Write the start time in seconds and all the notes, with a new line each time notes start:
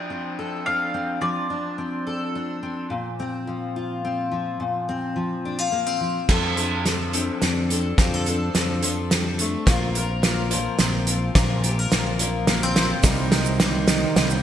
Already playing: F3 D4 G5
0.10 C4
0.39 A4
0.66 D4 F5
0.94 C4
1.21 F3 D5
1.50 D4
1.78 C4
2.07 A4
2.35 D4
2.63 C4
2.90 A#2
3.20 C4
3.47 F3
3.76 F4
4.05 C4
4.31 F3
4.60 A#2
4.89 C4
5.16 F3
5.45 D4
5.59 F4
5.72 A#3
5.86 C4
6.01 F3
6.29 F2 F3 C4 D4 A4, kick, snare, crash
6.56 C4 D4 A4, closed hi-hat
6.85 F3 C4 D4 A4, snare, closed hi-hat
7.13 F3 C4 D4 A4, closed hi-hat
7.41 F2 F3 C4 D4 A4, snare, closed hi-hat
7.69 C4 D4 A4, closed hi-hat
7.98 F2 F3 C4 D4 G4 A4, kick, snare, closed hi-hat
8.14 A4
8.26 C4 D4 A4, closed hi-hat
8.53 F2 F3 C4 D4 A4, snare, closed hi-hat
8.82 F3 C4 D4 A4, closed hi-hat
9.10 F3 G3 C4 D4 A4, snare, closed hi-hat
9.38 A3 C4 D4 A4, closed hi-hat
9.66 A#1 A#2 A#3 C4 F4 A#4, kick, snare, closed hi-hat
9.94 C4 F4 A#4, closed hi-hat
10.22 A#3 C4 F4 A#4, snare, closed hi-hat
10.50 F3 A#3 C4 F4 A#4, closed hi-hat
10.78 A#1 A#3 C4 F4 A#4, snare, closed hi-hat
11.06 C4 F4 A#4, closed hi-hat
11.35 A#1 A#2 A#3 C4 F4 A#4, kick, snare, closed hi-hat
11.63 C4 F4 G4 A#4, closed hi-hat
11.79 A#4
11.91 A#1 A#3 C4 F4 A#4, snare, closed hi-hat
12.19 F3 A#3 C4 F4 A#4, closed hi-hat
12.47 A#3 C4 F4 A#4, snare, closed hi-hat
12.63 C4
12.75 C4 F4 A#4, snare, closed hi-hat
13.03 C2 C3 G3 A#3 C4 D#4 A#4 C5 D#5 G5, kick, snare, closed hi-hat, shaker
13.31 A#3 D#4 A#4, snare, closed hi-hat
13.45 shaker
13.58 D#3 G3 A#3 D#4, snare, closed hi-hat
13.63 A#4
13.88 C3 G3 A#3 D#4 A#4, snare, closed hi-hat, shaker
14.16 C2 G3 A#3 D#4 A#4, snare, closed hi-hat, shaker
14.30 shaker